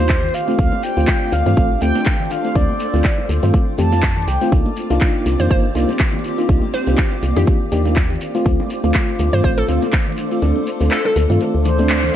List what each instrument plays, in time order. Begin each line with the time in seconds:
Already playing: fm bass D#2, string machine A#3 C4 F4 D6, ambient pad C4 G4 D6, soft synth lead C5
0.00 fm electric piano A#3 D4 D#4 F4
0.09 kick, clap, closed hi-hat, high bongo, shekere
0.23 closed hi-hat, low conga
0.29 closed hi-hat
0.34 string machine A3 D4 C5, soft synth lead F5, open hi-hat, shekere
0.48 fm electric piano A3 C4 F4, closed hi-hat, high bongo, shekere
0.59 fm bass D2, soft synth lead F5, kick, closed hi-hat, shekere
0.72 high bongo, high conga
0.83 soft synth lead G5, open hi-hat, shekere
0.97 fm bass D2, fm electric piano A3 C4 F4, closed hi-hat, shekere
1.08 kick, clap, closed hi-hat, high bongo, shekere
1.15 ambient pad A4
1.32 fm bass D2, soft synth lead F5, open hi-hat, high bongo, high conga, shekere
1.46 fm bass G2, fm electric piano A3 C4 F4, open hi-hat, low conga, shekere
1.57 fm bass A1, fm electric piano A3 C4 F4, kick, closed hi-hat, shekere
1.71 high bongo
1.81 fm bass D2, fm electric piano A3 C4 F4, soft synth lead G5, open hi-hat, shekere
1.95 closed hi-hat, high bongo, high conga, shekere
2.06 kick, clap, closed hi-hat, shekere
2.20 closed hi-hat, low conga
2.25 soft synth lead G5, closed hi-hat
2.31 soft synth lead F5, open hi-hat, high bongo, shekere
2.44 fm electric piano A3 C4 F4, closed hi-hat, shekere
2.55 fm bass D2, fm electric piano A3 C4 D4, soft synth lead D5, kick, closed hi-hat, high bongo, shekere
2.69 high conga
2.80 open hi-hat, shekere
2.94 fm bass D2, fm electric piano A3 C4 F4, closed hi-hat, high bongo, shekere
3.04 kick, clap, closed hi-hat, shekere
3.18 high bongo
3.29 fm bass D2, open hi-hat, high conga, shekere
3.43 fm bass G2, fm electric piano A3 C4 F4, open hi-hat, low conga, shekere
3.54 kick, closed hi-hat, high bongo, shekere
3.78 fm bass F2, fm electric piano A3 C4 G4, soft synth lead A5, open hi-hat, high bongo, low conga, shekere
3.92 fm electric piano A3 C4 F4, closed hi-hat, high conga, shekere
4.03 kick, clap, closed hi-hat, shekere
4.17 closed hi-hat, high bongo, low conga
4.22 closed hi-hat
4.28 fm bass C2, soft synth lead G5, open hi-hat, shekere
4.41 fm electric piano A3 C4 F4, closed hi-hat, high bongo, shekere
4.52 fm bass C2, string machine A#3 C4 D5, ambient pad C4, kick, closed hi-hat, shekere
4.65 high bongo, high conga
4.77 open hi-hat, shekere
4.90 fm bass C2, fm electric piano A#3 D4 D#4 F4, closed hi-hat, high bongo, shekere
4.98 ambient pad G4, kick, clap, closed hi-hat, shekere
5.26 fm bass C2, open hi-hat, high bongo, high conga, shekere
5.39 fm bass F2, fm electric piano A#3 D4 D#4 F4, synth pluck C5, open hi-hat, low conga, shekere
5.50 fm bass G1, fm electric piano A#3 D4 D#4 F4, synth pluck C5, kick, closed hi-hat, high bongo, shekere
5.75 fm bass C2, fm electric piano A#3 D4 D#4 F4, open hi-hat, shekere
5.89 closed hi-hat, high bongo, high conga, shekere
5.99 kick, clap, closed hi-hat, shekere
6.13 closed hi-hat, high bongo, low conga
6.19 closed hi-hat
6.24 open hi-hat, shekere
6.38 fm electric piano A#3 D4 D#4 F4, closed hi-hat, shekere
6.49 fm bass C2, fm electric piano A#3 D4 D#4, kick, closed hi-hat, high bongo, shekere
6.62 high conga
6.74 synth pluck C5, open hi-hat, high bongo, shekere
6.87 fm bass C2, fm electric piano A#3 D4 D#4 F4, closed hi-hat, shekere
6.98 kick, clap, closed hi-hat, shekere
7.12 high bongo
7.23 fm bass C2, open hi-hat, high conga, shekere
7.36 fm bass F2, fm electric piano A#3 D4 D#4 F4, synth pluck G4, open hi-hat, high bongo, low conga, shekere
7.47 kick, closed hi-hat, shekere
7.72 fm bass D#2, fm electric piano A#3 D4 D#4 G4, open hi-hat, high bongo, low conga, shekere
7.85 fm electric piano A#3 D4 D#4 F4, closed hi-hat, high conga, shekere
7.96 kick, clap, closed hi-hat, high bongo, shekere
8.10 closed hi-hat, low conga
8.16 closed hi-hat
8.21 string machine A3 D4 C5, open hi-hat, shekere
8.35 fm electric piano A3 C4 F4, closed hi-hat, high bongo, shekere
8.46 fm bass D2, fm electric piano C4 F4, kick, closed hi-hat, shekere
8.60 high bongo, high conga
8.70 open hi-hat, shekere
8.84 fm bass D2, fm electric piano A3 C4 F4, ambient pad A4, closed hi-hat, shekere
8.94 kick, clap, closed hi-hat, high bongo, shekere
9.19 fm bass D2, open hi-hat, high bongo, high conga, shekere
9.33 fm bass G2, fm electric piano A3 C4 F4, synth pluck C5, open hi-hat, low conga, shekere
9.44 fm bass A1, fm electric piano A3 C4 F4, synth pluck C5, kick, closed hi-hat, shekere
9.58 synth pluck A4, high bongo
9.68 fm bass D2, fm electric piano A3 C4 F4, open hi-hat, shekere
9.82 closed hi-hat, high bongo, high conga, shekere
9.93 kick, clap, closed hi-hat, shekere
10.07 closed hi-hat, low conga
10.12 closed hi-hat
10.17 open hi-hat, high bongo, shekere
10.31 fm electric piano A3 C4 F4, closed hi-hat, shekere
10.42 fm bass D2, fm electric piano A3 C4 D4, closed hi-hat, high bongo, shekere
10.56 high conga
10.67 open hi-hat, shekere
10.80 fm bass D2, fm electric piano A3 C4 F4, closed hi-hat, high bongo, shekere
10.91 synth pluck A4, clap, closed hi-hat, shekere
11.05 synth pluck A4, high bongo
11.16 fm bass D2, open hi-hat, high conga, shekere
11.30 fm bass G2, fm electric piano A3 C4 F4, open hi-hat, low conga, shekere
11.41 closed hi-hat, high bongo, shekere
11.55 fm bass D2
11.65 soft synth lead C5, open hi-hat, high bongo, low conga, shekere
11.78 fm electric piano A3 C4 D4, closed hi-hat, high conga, shekere
11.89 clap, closed hi-hat, shekere
12.03 closed hi-hat, high bongo, low conga
12.09 closed hi-hat